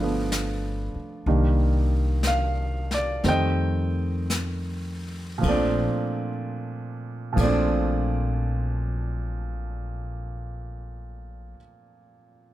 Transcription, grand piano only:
0.00 1.25 D3 soft
0.00 1.26 F3 soft
0.00 1.27 A3 soft
0.00 1.27 B3 soft
0.00 1.24 F4 medium
0.00 1.25 B4 medium
0.00 0.94 D5 medium
1.27 3.23 D#3 medium
1.27 3.23 G3 soft
1.27 3.25 A#3 soft
1.27 3.25 D4 medium
2.27 2.94 F5 medium
2.94 3.27 D5 medium
3.24 5.43 D#3 soft
3.24 5.43 G3 soft
3.24 5.43 A3 soft
3.24 5.44 C4 medium
3.28 5.42 D#5 medium
3.28 5.03 G5 medium
5.38 5.87 A#2 medium
5.38 5.89 F3 medium
5.45 5.91 A3 medium
5.45 5.92 C4 medium
5.45 5.89 D5 medium
5.51 5.94 D4 medium
7.33 11.55 A#2 medium
7.33 11.56 F3 medium
7.39 11.58 A3 medium
7.39 11.60 C4 medium
7.39 11.55 D5 medium
7.45 11.61 D4 medium

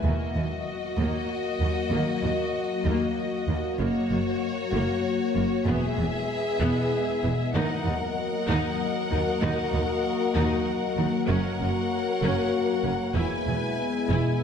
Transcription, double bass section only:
0.04 0.12 D#2 medium
0.36 0.44 D#2 soft
0.98 1.06 D#2 medium
1.61 1.69 D#2 soft
1.92 2.00 D#2 medium
2.23 2.31 D#2 soft
2.86 2.94 D#2 medium
3.48 3.56 D#2 soft
3.80 3.88 F#1 medium
4.11 4.19 F#1 medium
4.73 4.81 F#1 medium
5.36 5.44 F#1 soft
5.68 5.76 E1 medium
5.99 6.07 E1 medium
6.61 6.69 E1 medium
7.24 7.32 E1 medium
7.55 7.63 D#2 medium
7.86 7.94 D#2 medium
8.49 8.57 D#2 medium
9.11 9.19 D#2 medium
9.43 9.51 D#2 medium
9.73 9.81 D#2 medium
10.36 10.44 D#2 medium
10.99 11.07 D#2 medium
11.30 11.38 F#1 medium
11.61 11.69 F#1 medium
12.22 12.30 F#1 medium
12.85 12.93 F#1 soft
13.16 13.24 E1 medium
13.47 13.55 E1 medium
14.09 14.17 E1 medium

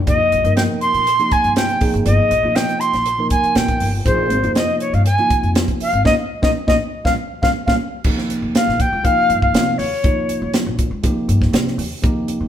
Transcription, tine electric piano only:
0.06 0.37 C3 medium
0.06 0.37 F3 medium
0.06 0.37 A#3 medium
0.06 0.38 D#4 medium
0.06 0.38 G4 medium
0.44 1.05 C3 medium
0.44 1.05 F3 medium
0.44 1.05 A#3 medium
0.44 1.05 D#4 medium
0.44 1.05 A#4 medium
1.19 1.79 C3 medium
1.19 1.80 F3 medium
1.19 1.80 A#3 medium
1.19 1.80 D#4 medium
1.19 1.82 G4 medium
1.81 2.31 C3 medium
1.81 2.32 F3 medium
1.81 2.32 A#3 medium
1.81 2.32 D#4 medium
1.81 2.32 G#4 medium
2.44 3.04 C3 medium
2.44 3.04 F3 medium
2.44 3.04 A#3 medium
2.44 3.05 D#4 medium
2.44 3.05 F4 medium
3.18 3.89 C3 medium
3.18 3.89 F3 medium
3.18 3.89 A#3 medium
3.18 3.89 D#4 medium
3.18 3.90 A#4 medium
4.06 4.36 C3 medium
4.06 4.36 F3 medium
4.06 4.36 A#3 medium
4.06 4.36 D#4 medium
4.06 4.37 G#4 medium
4.43 5.03 C3 medium
4.43 5.04 F3 medium
4.43 5.04 A#3 medium
4.43 5.04 D#4 medium
4.43 5.04 F4 medium
5.18 5.88 C3 medium
5.18 5.89 F3 medium
5.18 5.89 A#3 medium
5.18 5.89 D#4 medium
5.18 5.89 F4 medium
6.05 6.13 A#3 medium
6.05 6.13 C#4 medium
6.05 6.13 D#4 medium
6.43 6.50 A#3 medium
6.43 6.51 C#4 medium
6.43 6.51 D#4 medium
6.67 6.75 A#3 medium
6.67 6.75 C#4 medium
6.67 6.75 D#4 medium
7.06 7.14 G3 medium
7.06 7.13 A#3 medium
7.06 7.14 C#4 medium
7.44 7.51 G3 medium
7.44 7.51 A#3 medium
7.44 7.51 C#4 medium
7.69 7.76 G3 medium
7.69 7.76 A#3 medium
7.69 7.76 C#4 medium
8.05 8.86 C3 medium
8.05 8.86 F3 medium
8.05 8.86 A#3 medium
8.05 8.86 D#4 medium
8.05 8.87 G4 medium
9.03 9.85 C3 medium
9.03 9.85 F3 medium
9.03 9.85 A#3 medium
9.03 9.85 D#4 medium
9.03 9.85 F4 medium
10.03 10.85 C3 medium
10.03 10.85 F3 medium
10.03 10.85 A#3 medium
10.03 10.85 D#4 medium
10.03 10.85 F4 medium
11.03 11.84 C3 medium
11.03 11.85 F3 medium
11.03 11.85 A#3 medium
11.03 11.85 D#4 medium
11.03 11.85 G4 medium
12.02 12.48 C3 medium
12.02 12.48 F3 medium
12.02 12.48 A#3 medium
12.02 12.48 D#4 medium
12.02 12.48 G4 medium

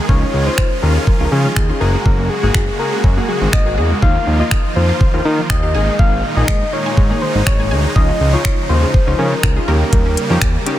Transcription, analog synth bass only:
0.09 0.24 C#2 loud
0.34 0.49 C#2 medium
0.83 0.98 D#2 medium
1.20 1.28 C#2 medium
1.32 1.47 C#3 loud
1.57 1.72 D#2 medium
1.81 1.97 F#1 loud
2.06 2.29 F#1 loud
2.43 2.51 G#1 medium
2.55 2.70 F#1 medium
3.04 3.19 F#2 loud
3.41 3.49 G#1 loud
3.53 3.79 G#1 medium
3.78 3.93 E2 medium
4.02 4.18 D#2 loud
4.27 4.42 D#2 medium
4.76 4.92 F2 medium
5.14 5.21 D#2 loud
5.25 5.41 D#3 loud
5.50 5.76 D#2 medium
5.75 5.90 G#1 medium
5.99 6.23 G#1 loud
6.37 6.44 A#1 medium
6.48 6.64 G#1 medium
6.97 7.13 G#2 loud
7.35 7.42 G#1 medium
7.47 7.73 G#1 medium
7.71 7.87 D2 medium
7.96 8.11 C#2 loud
8.20 8.36 C#2 loud
8.70 8.85 D#2 medium
9.07 9.15 C#2 loud
9.19 9.34 C#3 loud
9.43 9.59 C#2 medium
9.68 9.83 D#2 loud
9.93 10.16 D#2 loud
10.30 10.38 F2 medium
10.42 10.57 D#2 medium

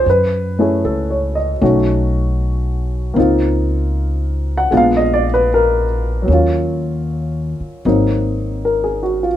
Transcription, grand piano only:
0.10 1.35 B4 medium
0.59 1.60 A3 soft
0.59 1.60 C#4 soft
0.59 1.62 E4 soft
0.59 1.62 G#4 soft
0.85 1.34 A4 soft
1.10 1.51 C#5 soft
1.35 1.76 D#5 soft
1.61 3.17 A3 soft
1.61 3.17 C#4 soft
1.61 3.16 D#4 soft
1.61 3.17 F#4 soft
3.14 4.70 A#3 soft
3.14 4.71 C4 soft
3.14 4.72 D#4 soft
3.19 4.71 F4 soft
4.57 4.70 F#5 medium
4.71 6.27 G#3 soft
4.71 6.27 B3 soft
4.71 6.27 D4 soft
4.71 6.28 F4 soft
4.77 5.00 F5 medium
4.97 5.23 D#5 medium
5.13 5.31 D5 medium
5.34 5.47 B4 medium
5.54 5.84 A#4 medium
6.22 7.81 F#3 soft
6.22 7.83 A#3 soft
6.30 7.85 C#4 soft
6.30 7.87 F4 soft
7.85 9.37 F#3 soft
7.85 9.37 A#3 soft
7.85 9.37 C4 soft
7.85 9.37 D#4 soft
8.65 9.02 A#4 soft
8.84 9.18 G#4 soft
9.03 9.27 F#4 soft
9.23 9.37 F4 soft

